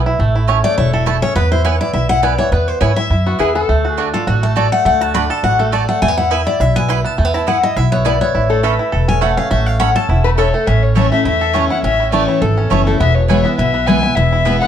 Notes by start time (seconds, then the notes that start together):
Already playing: B1 B3 E4
0.06 E4
0.19 A1 A3
0.36 E4
0.48 A3 C#4 E4 C#5 A5
0.64 A3 D5
0.78 E1 E4 C#5
0.93 E4 A4
1.06 A3 E4 A4 C#5 A5
1.22 C#4 C#5
1.36 E2 B3 B4
1.52 E4 C5
1.64 B3 E4 B4 C#5 G#5
1.81 E4 D5
1.93 B1 E4 E5
2.09 E4 F#5
2.22 B3 E4 B4 D5 G#5
2.38 E3 C#5
2.52 E2 B3 B4
2.68 C5
2.80 G#2 B3 E4 B4 C#5 G#5
2.96 E4 E5
3.10 F#2 E4
3.26 B3 F#4
3.39 E2 B3 E4 G#4 B4 G#5
3.55 B3 A4
3.69 D2 A3
3.85 F#4
3.90 G#4
3.97 A3 D4 F#4 D5 A5
4.14 F4 A4
4.27 A1 F#4
4.43 A3 A4
4.56 A3 F#4 A4 D5 A5
4.72 A3 F#5
4.85 D2 A3 F#5
5.01 F#4 A5
5.14 A3 D4 F#4 D5 A5 B5
5.30 A4 A5
5.43 A1 F#4 F#5
5.59 A3 A4
5.72 A3 F#4 A4 D5 A5
5.89 A3 F#5
6.02 E2 A3 G#5
6.08 B3
6.17 E4 F#5
6.30 B3 E4 B4 E5 G#5
6.47 E4 D5
6.60 B1 E4 E5
6.76 B3 G#5
6.88 B3 E4 B4 G#5 B5
7.04 B3 A5
7.18 E2 A3 G#5
7.25 B3
7.34 E4 A5
7.47 B3 E4 B4 F#5 G#5
7.63 E4 D#5
7.76 B1 E4 E5
7.92 B3 C#5
8.05 B3 E4 B4 D5 G#5
8.21 B3 C#5
8.35 A1 E4
8.50 A3 A4
8.63 C#4 A4 B4 E5 B5
8.79 E4
8.92 E1 A4
9.08 C#4 G#5
9.21 A3 C#4 A4 E5 F#5 B5
9.37 C#4 F5
9.51 A1 A3 E5
9.66 F5
9.79 C#4 A4 E5 F#5 B5
9.96 A4 A5
10.09 E1 E4
10.24 A3 B4
10.38 C#4 A4 C#5 E5 B5
10.53 A3 A4
10.67 A1 A2 C#4 E5
10.83 C#5
10.95 E3 A3 C#4 E4 A4 C#5 A5
11.11 A3 C#4 E4 E5
11.25 E2 E4 E5
11.41 A4
11.53 E3 A3 C#4 E4 C#5 A5
11.70 C#4 E4 F#5
11.83 A1 A2 C#4 E5
12.00 E4
12.12 E3 A3 C#4 E4 C#5 D5 A5
12.27 E4 C#5
12.41 G#1 E2 A4
12.57 C#4
12.70 F#1 E3 A3 C#4 E4 C#5 A5
12.86 A3 C#4 E4 A4
13.00 E1 E2 B3 E5
13.15 C#5
13.28 E3 G#3 B3 E4 B4 C#5 G#5
13.44 B3 E4 E5
13.57 B1 B2 E4 E5
13.74 B3
13.87 E3 G#3 B3 E4 B4 G#5
14.03 B3 E4
14.15 E1 E2 E4 E5
14.33 E4
14.45 E3 G#3 B3 E4 B4 G#5
14.60 B3 F#5